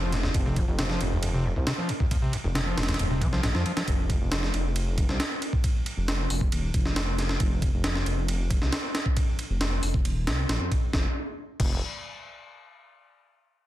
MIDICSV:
0, 0, Header, 1, 4, 480
1, 0, Start_track
1, 0, Tempo, 441176
1, 379, Time_signature, 4, 2, 24, 8
1, 14870, End_track
2, 0, Start_track
2, 0, Title_t, "Acid bass"
2, 0, Program_c, 0, 38
2, 14, Note_on_c, 0, 53, 76
2, 133, Note_on_c, 0, 41, 78
2, 149, Note_off_c, 0, 53, 0
2, 175, Note_off_c, 0, 41, 0
2, 256, Note_on_c, 0, 39, 78
2, 323, Note_off_c, 0, 39, 0
2, 379, Note_on_c, 0, 41, 85
2, 445, Note_off_c, 0, 41, 0
2, 501, Note_on_c, 0, 48, 102
2, 619, Note_on_c, 0, 41, 101
2, 635, Note_off_c, 0, 48, 0
2, 659, Note_off_c, 0, 41, 0
2, 740, Note_on_c, 0, 39, 76
2, 779, Note_off_c, 0, 39, 0
2, 859, Note_on_c, 0, 48, 102
2, 925, Note_off_c, 0, 48, 0
2, 981, Note_on_c, 0, 53, 76
2, 1098, Note_on_c, 0, 41, 81
2, 1115, Note_off_c, 0, 53, 0
2, 1138, Note_off_c, 0, 41, 0
2, 1221, Note_on_c, 0, 39, 78
2, 1286, Note_off_c, 0, 39, 0
2, 1342, Note_on_c, 0, 41, 83
2, 1407, Note_off_c, 0, 41, 0
2, 1460, Note_on_c, 0, 48, 104
2, 1577, Note_on_c, 0, 41, 103
2, 1593, Note_off_c, 0, 48, 0
2, 1618, Note_off_c, 0, 41, 0
2, 1700, Note_on_c, 0, 39, 78
2, 1739, Note_off_c, 0, 39, 0
2, 1816, Note_on_c, 0, 48, 103
2, 1884, Note_off_c, 0, 48, 0
2, 1939, Note_on_c, 0, 53, 77
2, 2058, Note_on_c, 0, 41, 74
2, 2074, Note_off_c, 0, 53, 0
2, 2098, Note_off_c, 0, 41, 0
2, 2182, Note_on_c, 0, 39, 78
2, 2246, Note_off_c, 0, 39, 0
2, 2298, Note_on_c, 0, 41, 83
2, 2365, Note_off_c, 0, 41, 0
2, 2416, Note_on_c, 0, 48, 98
2, 2536, Note_on_c, 0, 41, 102
2, 2552, Note_off_c, 0, 48, 0
2, 2577, Note_off_c, 0, 41, 0
2, 2656, Note_on_c, 0, 39, 80
2, 2697, Note_off_c, 0, 39, 0
2, 2773, Note_on_c, 0, 48, 100
2, 2842, Note_off_c, 0, 48, 0
2, 2897, Note_on_c, 0, 53, 76
2, 3017, Note_on_c, 0, 41, 79
2, 3033, Note_off_c, 0, 53, 0
2, 3058, Note_off_c, 0, 41, 0
2, 3136, Note_on_c, 0, 39, 78
2, 3203, Note_off_c, 0, 39, 0
2, 3259, Note_on_c, 0, 41, 81
2, 3325, Note_off_c, 0, 41, 0
2, 3380, Note_on_c, 0, 48, 104
2, 3498, Note_on_c, 0, 53, 78
2, 3514, Note_off_c, 0, 48, 0
2, 3565, Note_off_c, 0, 53, 0
2, 3620, Note_on_c, 0, 53, 98
2, 3718, Note_off_c, 0, 53, 0
2, 3739, Note_on_c, 0, 44, 84
2, 3806, Note_off_c, 0, 44, 0
2, 3862, Note_on_c, 0, 53, 102
2, 3959, Note_off_c, 0, 53, 0
2, 3982, Note_on_c, 0, 53, 102
2, 4047, Note_off_c, 0, 53, 0
2, 4101, Note_on_c, 0, 53, 102
2, 4166, Note_off_c, 0, 53, 0
2, 14870, End_track
3, 0, Start_track
3, 0, Title_t, "Detuned saw bass"
3, 0, Program_c, 1, 39
3, 0, Note_on_c, 1, 29, 93
3, 343, Note_off_c, 1, 29, 0
3, 374, Note_on_c, 1, 29, 100
3, 704, Note_off_c, 1, 29, 0
3, 740, Note_on_c, 1, 29, 100
3, 1066, Note_off_c, 1, 29, 0
3, 1098, Note_on_c, 1, 29, 94
3, 1665, Note_off_c, 1, 29, 0
3, 1701, Note_on_c, 1, 36, 81
3, 1798, Note_off_c, 1, 36, 0
3, 2660, Note_on_c, 1, 29, 103
3, 2985, Note_off_c, 1, 29, 0
3, 3020, Note_on_c, 1, 29, 93
3, 3217, Note_off_c, 1, 29, 0
3, 3259, Note_on_c, 1, 27, 88
3, 3498, Note_on_c, 1, 36, 81
3, 3514, Note_off_c, 1, 27, 0
3, 3696, Note_off_c, 1, 36, 0
3, 3740, Note_on_c, 1, 34, 83
3, 3839, Note_off_c, 1, 34, 0
3, 3861, Note_on_c, 1, 41, 94
3, 3958, Note_off_c, 1, 41, 0
3, 4217, Note_on_c, 1, 29, 97
3, 4545, Note_off_c, 1, 29, 0
3, 4579, Note_on_c, 1, 29, 102
3, 4905, Note_off_c, 1, 29, 0
3, 4940, Note_on_c, 1, 29, 91
3, 5506, Note_off_c, 1, 29, 0
3, 5541, Note_on_c, 1, 36, 82
3, 5639, Note_off_c, 1, 36, 0
3, 6499, Note_on_c, 1, 29, 105
3, 6825, Note_off_c, 1, 29, 0
3, 6855, Note_on_c, 1, 29, 95
3, 7055, Note_off_c, 1, 29, 0
3, 7095, Note_on_c, 1, 27, 88
3, 7295, Note_off_c, 1, 27, 0
3, 7336, Note_on_c, 1, 29, 98
3, 8024, Note_off_c, 1, 29, 0
3, 8053, Note_on_c, 1, 29, 97
3, 8383, Note_off_c, 1, 29, 0
3, 8417, Note_on_c, 1, 29, 102
3, 8744, Note_off_c, 1, 29, 0
3, 8771, Note_on_c, 1, 29, 94
3, 9342, Note_off_c, 1, 29, 0
3, 9379, Note_on_c, 1, 36, 82
3, 9477, Note_off_c, 1, 36, 0
3, 10338, Note_on_c, 1, 29, 105
3, 10664, Note_off_c, 1, 29, 0
3, 10697, Note_on_c, 1, 29, 91
3, 10896, Note_off_c, 1, 29, 0
3, 10934, Note_on_c, 1, 27, 90
3, 11176, Note_on_c, 1, 36, 80
3, 11193, Note_off_c, 1, 27, 0
3, 11376, Note_off_c, 1, 36, 0
3, 11416, Note_on_c, 1, 34, 85
3, 11517, Note_off_c, 1, 34, 0
3, 11538, Note_on_c, 1, 41, 96
3, 11637, Note_off_c, 1, 41, 0
3, 11898, Note_on_c, 1, 29, 97
3, 12033, Note_off_c, 1, 29, 0
3, 12618, Note_on_c, 1, 29, 96
3, 12842, Note_off_c, 1, 29, 0
3, 14870, End_track
4, 0, Start_track
4, 0, Title_t, "Drums"
4, 135, Note_on_c, 9, 38, 40
4, 135, Note_on_c, 9, 51, 65
4, 244, Note_off_c, 9, 38, 0
4, 244, Note_off_c, 9, 51, 0
4, 255, Note_on_c, 9, 38, 57
4, 364, Note_off_c, 9, 38, 0
4, 374, Note_on_c, 9, 51, 86
4, 375, Note_on_c, 9, 36, 105
4, 483, Note_off_c, 9, 51, 0
4, 484, Note_off_c, 9, 36, 0
4, 614, Note_on_c, 9, 51, 66
4, 615, Note_on_c, 9, 36, 96
4, 723, Note_off_c, 9, 51, 0
4, 724, Note_off_c, 9, 36, 0
4, 855, Note_on_c, 9, 38, 115
4, 855, Note_on_c, 9, 51, 88
4, 964, Note_off_c, 9, 38, 0
4, 964, Note_off_c, 9, 51, 0
4, 975, Note_on_c, 9, 38, 53
4, 1084, Note_off_c, 9, 38, 0
4, 1094, Note_on_c, 9, 51, 67
4, 1203, Note_off_c, 9, 51, 0
4, 1334, Note_on_c, 9, 51, 89
4, 1442, Note_off_c, 9, 51, 0
4, 1815, Note_on_c, 9, 38, 115
4, 1815, Note_on_c, 9, 51, 86
4, 1924, Note_off_c, 9, 38, 0
4, 1924, Note_off_c, 9, 51, 0
4, 2056, Note_on_c, 9, 51, 65
4, 2164, Note_off_c, 9, 51, 0
4, 2178, Note_on_c, 9, 36, 94
4, 2287, Note_off_c, 9, 36, 0
4, 2297, Note_on_c, 9, 51, 88
4, 2298, Note_on_c, 9, 36, 109
4, 2406, Note_off_c, 9, 36, 0
4, 2406, Note_off_c, 9, 51, 0
4, 2536, Note_on_c, 9, 51, 69
4, 2645, Note_off_c, 9, 51, 0
4, 2778, Note_on_c, 9, 38, 116
4, 2778, Note_on_c, 9, 51, 88
4, 2887, Note_off_c, 9, 38, 0
4, 2887, Note_off_c, 9, 51, 0
4, 3020, Note_on_c, 9, 38, 88
4, 3020, Note_on_c, 9, 51, 65
4, 3081, Note_off_c, 9, 38, 0
4, 3081, Note_off_c, 9, 51, 0
4, 3081, Note_on_c, 9, 38, 86
4, 3081, Note_on_c, 9, 51, 63
4, 3139, Note_off_c, 9, 38, 0
4, 3139, Note_off_c, 9, 51, 0
4, 3139, Note_on_c, 9, 38, 89
4, 3139, Note_on_c, 9, 51, 67
4, 3201, Note_off_c, 9, 38, 0
4, 3201, Note_off_c, 9, 51, 0
4, 3201, Note_on_c, 9, 38, 86
4, 3201, Note_on_c, 9, 51, 69
4, 3257, Note_off_c, 9, 51, 0
4, 3257, Note_on_c, 9, 51, 87
4, 3310, Note_off_c, 9, 38, 0
4, 3366, Note_off_c, 9, 51, 0
4, 3497, Note_on_c, 9, 36, 98
4, 3498, Note_on_c, 9, 51, 70
4, 3606, Note_off_c, 9, 36, 0
4, 3607, Note_off_c, 9, 51, 0
4, 3620, Note_on_c, 9, 38, 48
4, 3729, Note_off_c, 9, 38, 0
4, 3737, Note_on_c, 9, 38, 102
4, 3737, Note_on_c, 9, 51, 78
4, 3845, Note_off_c, 9, 38, 0
4, 3845, Note_off_c, 9, 51, 0
4, 3861, Note_on_c, 9, 38, 47
4, 3969, Note_off_c, 9, 38, 0
4, 3979, Note_on_c, 9, 51, 59
4, 4088, Note_off_c, 9, 51, 0
4, 4100, Note_on_c, 9, 38, 102
4, 4100, Note_on_c, 9, 51, 76
4, 4209, Note_off_c, 9, 38, 0
4, 4209, Note_off_c, 9, 51, 0
4, 4217, Note_on_c, 9, 36, 108
4, 4218, Note_on_c, 9, 51, 85
4, 4326, Note_off_c, 9, 36, 0
4, 4327, Note_off_c, 9, 51, 0
4, 4457, Note_on_c, 9, 36, 95
4, 4457, Note_on_c, 9, 51, 66
4, 4566, Note_off_c, 9, 36, 0
4, 4566, Note_off_c, 9, 51, 0
4, 4696, Note_on_c, 9, 38, 116
4, 4696, Note_on_c, 9, 51, 86
4, 4805, Note_off_c, 9, 38, 0
4, 4805, Note_off_c, 9, 51, 0
4, 4819, Note_on_c, 9, 38, 55
4, 4928, Note_off_c, 9, 38, 0
4, 4937, Note_on_c, 9, 51, 65
4, 5046, Note_off_c, 9, 51, 0
4, 5176, Note_on_c, 9, 51, 91
4, 5285, Note_off_c, 9, 51, 0
4, 5415, Note_on_c, 9, 51, 71
4, 5416, Note_on_c, 9, 36, 99
4, 5524, Note_off_c, 9, 36, 0
4, 5524, Note_off_c, 9, 51, 0
4, 5539, Note_on_c, 9, 38, 45
4, 5647, Note_off_c, 9, 38, 0
4, 5656, Note_on_c, 9, 38, 115
4, 5656, Note_on_c, 9, 51, 85
4, 5765, Note_off_c, 9, 38, 0
4, 5765, Note_off_c, 9, 51, 0
4, 5897, Note_on_c, 9, 51, 67
4, 6005, Note_off_c, 9, 51, 0
4, 6017, Note_on_c, 9, 36, 93
4, 6126, Note_off_c, 9, 36, 0
4, 6135, Note_on_c, 9, 36, 107
4, 6135, Note_on_c, 9, 51, 86
4, 6243, Note_off_c, 9, 51, 0
4, 6244, Note_off_c, 9, 36, 0
4, 6377, Note_on_c, 9, 51, 67
4, 6486, Note_off_c, 9, 51, 0
4, 6617, Note_on_c, 9, 38, 118
4, 6617, Note_on_c, 9, 51, 89
4, 6726, Note_off_c, 9, 38, 0
4, 6726, Note_off_c, 9, 51, 0
4, 6857, Note_on_c, 9, 46, 80
4, 6966, Note_off_c, 9, 46, 0
4, 6977, Note_on_c, 9, 36, 96
4, 7085, Note_off_c, 9, 36, 0
4, 7096, Note_on_c, 9, 51, 90
4, 7204, Note_off_c, 9, 51, 0
4, 7334, Note_on_c, 9, 51, 72
4, 7335, Note_on_c, 9, 36, 96
4, 7443, Note_off_c, 9, 36, 0
4, 7443, Note_off_c, 9, 51, 0
4, 7459, Note_on_c, 9, 38, 47
4, 7568, Note_off_c, 9, 38, 0
4, 7575, Note_on_c, 9, 38, 118
4, 7575, Note_on_c, 9, 51, 88
4, 7684, Note_off_c, 9, 38, 0
4, 7684, Note_off_c, 9, 51, 0
4, 7817, Note_on_c, 9, 38, 39
4, 7817, Note_on_c, 9, 51, 68
4, 7926, Note_off_c, 9, 38, 0
4, 7926, Note_off_c, 9, 51, 0
4, 7935, Note_on_c, 9, 38, 56
4, 8044, Note_off_c, 9, 38, 0
4, 8051, Note_on_c, 9, 51, 85
4, 8053, Note_on_c, 9, 36, 105
4, 8160, Note_off_c, 9, 51, 0
4, 8162, Note_off_c, 9, 36, 0
4, 8292, Note_on_c, 9, 51, 68
4, 8293, Note_on_c, 9, 36, 96
4, 8401, Note_off_c, 9, 36, 0
4, 8401, Note_off_c, 9, 51, 0
4, 8530, Note_on_c, 9, 38, 120
4, 8530, Note_on_c, 9, 51, 89
4, 8639, Note_off_c, 9, 38, 0
4, 8639, Note_off_c, 9, 51, 0
4, 8655, Note_on_c, 9, 38, 55
4, 8764, Note_off_c, 9, 38, 0
4, 8773, Note_on_c, 9, 51, 65
4, 8882, Note_off_c, 9, 51, 0
4, 9014, Note_on_c, 9, 51, 88
4, 9122, Note_off_c, 9, 51, 0
4, 9254, Note_on_c, 9, 36, 97
4, 9254, Note_on_c, 9, 51, 73
4, 9362, Note_off_c, 9, 36, 0
4, 9362, Note_off_c, 9, 51, 0
4, 9376, Note_on_c, 9, 38, 45
4, 9485, Note_off_c, 9, 38, 0
4, 9493, Note_on_c, 9, 38, 115
4, 9493, Note_on_c, 9, 51, 86
4, 9602, Note_off_c, 9, 38, 0
4, 9602, Note_off_c, 9, 51, 0
4, 9734, Note_on_c, 9, 38, 98
4, 9734, Note_on_c, 9, 51, 77
4, 9843, Note_off_c, 9, 38, 0
4, 9843, Note_off_c, 9, 51, 0
4, 9855, Note_on_c, 9, 36, 94
4, 9964, Note_off_c, 9, 36, 0
4, 9972, Note_on_c, 9, 51, 87
4, 9974, Note_on_c, 9, 36, 108
4, 10081, Note_off_c, 9, 51, 0
4, 10083, Note_off_c, 9, 36, 0
4, 10214, Note_on_c, 9, 51, 68
4, 10323, Note_off_c, 9, 51, 0
4, 10453, Note_on_c, 9, 38, 117
4, 10453, Note_on_c, 9, 51, 88
4, 10562, Note_off_c, 9, 38, 0
4, 10562, Note_off_c, 9, 51, 0
4, 10693, Note_on_c, 9, 46, 81
4, 10802, Note_off_c, 9, 46, 0
4, 10817, Note_on_c, 9, 36, 99
4, 10926, Note_off_c, 9, 36, 0
4, 10935, Note_on_c, 9, 51, 89
4, 11044, Note_off_c, 9, 51, 0
4, 11176, Note_on_c, 9, 38, 107
4, 11176, Note_on_c, 9, 51, 81
4, 11285, Note_off_c, 9, 38, 0
4, 11285, Note_off_c, 9, 51, 0
4, 11417, Note_on_c, 9, 38, 105
4, 11417, Note_on_c, 9, 51, 79
4, 11526, Note_off_c, 9, 38, 0
4, 11526, Note_off_c, 9, 51, 0
4, 11658, Note_on_c, 9, 36, 81
4, 11659, Note_on_c, 9, 51, 58
4, 11767, Note_off_c, 9, 36, 0
4, 11768, Note_off_c, 9, 51, 0
4, 11896, Note_on_c, 9, 38, 84
4, 11898, Note_on_c, 9, 36, 108
4, 12005, Note_off_c, 9, 38, 0
4, 12007, Note_off_c, 9, 36, 0
4, 12618, Note_on_c, 9, 36, 110
4, 12618, Note_on_c, 9, 49, 84
4, 12727, Note_off_c, 9, 36, 0
4, 12727, Note_off_c, 9, 49, 0
4, 14870, End_track
0, 0, End_of_file